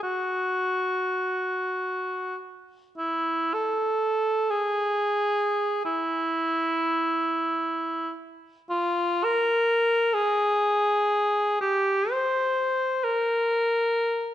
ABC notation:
X:1
M:6/8
L:1/8
Q:3/8=43
K:E
V:1 name="Cor anglais"
F4- F z | E A2 G3 | E4- E z | [K:Bbdor] F B2 A3 |
G c2 B3 |]